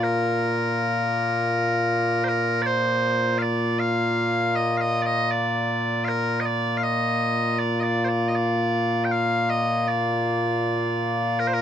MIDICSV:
0, 0, Header, 1, 2, 480
1, 0, Start_track
1, 0, Key_signature, -2, "major"
1, 0, Tempo, 759494
1, 9, Time_signature, 3, 2, 24, 8
1, 7342, End_track
2, 0, Start_track
2, 0, Title_t, "Bagpipes"
2, 0, Program_c, 0, 109
2, 0, Note_on_c, 0, 46, 89
2, 0, Note_on_c, 0, 58, 89
2, 0, Note_on_c, 0, 65, 89
2, 21, Note_on_c, 0, 70, 87
2, 1416, Note_off_c, 0, 70, 0
2, 1416, Note_on_c, 0, 72, 91
2, 1443, Note_off_c, 0, 72, 0
2, 1443, Note_on_c, 0, 70, 91
2, 1656, Note_off_c, 0, 70, 0
2, 1656, Note_on_c, 0, 74, 112
2, 1682, Note_off_c, 0, 74, 0
2, 1682, Note_on_c, 0, 72, 112
2, 2138, Note_off_c, 0, 72, 0
2, 2138, Note_on_c, 0, 77, 93
2, 2161, Note_off_c, 0, 77, 0
2, 2161, Note_on_c, 0, 74, 93
2, 2396, Note_off_c, 0, 74, 0
2, 2396, Note_on_c, 0, 77, 108
2, 2877, Note_off_c, 0, 77, 0
2, 2877, Note_on_c, 0, 75, 96
2, 3014, Note_off_c, 0, 75, 0
2, 3014, Note_on_c, 0, 77, 68
2, 3037, Note_off_c, 0, 77, 0
2, 3037, Note_on_c, 0, 75, 109
2, 3175, Note_off_c, 0, 75, 0
2, 3175, Note_on_c, 0, 74, 83
2, 3197, Note_off_c, 0, 74, 0
2, 3197, Note_on_c, 0, 75, 113
2, 3356, Note_off_c, 0, 75, 0
2, 3356, Note_on_c, 0, 74, 86
2, 3820, Note_off_c, 0, 74, 0
2, 3820, Note_on_c, 0, 77, 92
2, 3844, Note_off_c, 0, 77, 0
2, 3844, Note_on_c, 0, 70, 92
2, 4047, Note_off_c, 0, 70, 0
2, 4047, Note_on_c, 0, 75, 73
2, 4080, Note_off_c, 0, 75, 0
2, 4080, Note_on_c, 0, 74, 96
2, 4280, Note_off_c, 0, 74, 0
2, 4280, Note_on_c, 0, 77, 84
2, 4316, Note_off_c, 0, 77, 0
2, 4316, Note_on_c, 0, 75, 101
2, 4795, Note_off_c, 0, 75, 0
2, 4795, Note_on_c, 0, 74, 88
2, 4930, Note_off_c, 0, 74, 0
2, 4930, Note_on_c, 0, 75, 67
2, 4947, Note_off_c, 0, 75, 0
2, 4947, Note_on_c, 0, 74, 100
2, 5085, Note_off_c, 0, 74, 0
2, 5085, Note_on_c, 0, 72, 58
2, 5109, Note_off_c, 0, 72, 0
2, 5109, Note_on_c, 0, 74, 87
2, 5236, Note_off_c, 0, 74, 0
2, 5236, Note_on_c, 0, 75, 70
2, 5278, Note_off_c, 0, 75, 0
2, 5278, Note_on_c, 0, 74, 94
2, 5717, Note_off_c, 0, 74, 0
2, 5717, Note_on_c, 0, 79, 86
2, 5760, Note_off_c, 0, 79, 0
2, 5760, Note_on_c, 0, 77, 102
2, 6000, Note_off_c, 0, 77, 0
2, 6000, Note_on_c, 0, 75, 99
2, 6245, Note_off_c, 0, 75, 0
2, 6245, Note_on_c, 0, 74, 76
2, 7201, Note_off_c, 0, 74, 0
2, 7201, Note_on_c, 0, 70, 96
2, 7251, Note_off_c, 0, 70, 0
2, 7251, Note_on_c, 0, 72, 86
2, 7291, Note_off_c, 0, 72, 0
2, 7291, Note_on_c, 0, 70, 95
2, 7342, Note_off_c, 0, 46, 0
2, 7342, Note_off_c, 0, 58, 0
2, 7342, Note_off_c, 0, 65, 0
2, 7342, Note_off_c, 0, 70, 0
2, 7342, End_track
0, 0, End_of_file